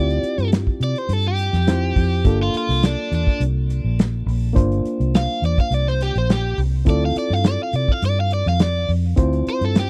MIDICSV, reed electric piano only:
0, 0, Header, 1, 2, 480
1, 0, Start_track
1, 0, Key_signature, -1, "minor"
1, 0, Tempo, 577478
1, 1866, Time_signature, 4, 2, 24, 8
1, 8228, End_track
2, 0, Start_track
2, 0, Title_t, "Reed electric piano"
2, 0, Program_c, 0, 4
2, 0, Note_on_c, 0, 60, 63
2, 0, Note_on_c, 0, 64, 56
2, 0, Note_on_c, 0, 65, 63
2, 0, Note_on_c, 0, 67, 65
2, 1355, Note_off_c, 0, 60, 0
2, 1357, Note_off_c, 0, 64, 0
2, 1360, Note_off_c, 0, 65, 0
2, 1362, Note_off_c, 0, 67, 0
2, 1389, Note_on_c, 0, 60, 45
2, 1389, Note_on_c, 0, 64, 44
2, 1397, Note_on_c, 0, 72, 45
2, 1398, Note_on_c, 0, 65, 41
2, 1867, Note_on_c, 0, 58, 67
2, 1868, Note_off_c, 0, 60, 0
2, 1868, Note_off_c, 0, 64, 0
2, 1869, Note_off_c, 0, 65, 0
2, 1872, Note_off_c, 0, 72, 0
2, 1872, Note_on_c, 0, 62, 53
2, 1879, Note_on_c, 0, 65, 56
2, 1882, Note_on_c, 0, 69, 66
2, 3754, Note_off_c, 0, 58, 0
2, 3756, Note_off_c, 0, 62, 0
2, 3760, Note_off_c, 0, 65, 0
2, 3762, Note_off_c, 0, 69, 0
2, 3768, Note_on_c, 0, 58, 76
2, 3779, Note_on_c, 0, 62, 70
2, 3787, Note_on_c, 0, 65, 65
2, 3789, Note_on_c, 0, 72, 88
2, 5664, Note_off_c, 0, 58, 0
2, 5670, Note_off_c, 0, 62, 0
2, 5674, Note_off_c, 0, 65, 0
2, 5674, Note_off_c, 0, 72, 0
2, 5695, Note_on_c, 0, 60, 63
2, 5702, Note_on_c, 0, 64, 60
2, 5710, Note_on_c, 0, 65, 62
2, 5716, Note_on_c, 0, 69, 70
2, 7587, Note_off_c, 0, 60, 0
2, 7590, Note_off_c, 0, 64, 0
2, 7595, Note_off_c, 0, 65, 0
2, 7598, Note_off_c, 0, 69, 0
2, 7615, Note_on_c, 0, 60, 80
2, 7623, Note_on_c, 0, 64, 64
2, 7627, Note_on_c, 0, 65, 62
2, 7634, Note_on_c, 0, 72, 87
2, 8228, Note_off_c, 0, 60, 0
2, 8228, Note_off_c, 0, 64, 0
2, 8228, Note_off_c, 0, 65, 0
2, 8228, Note_off_c, 0, 72, 0
2, 8228, End_track
0, 0, End_of_file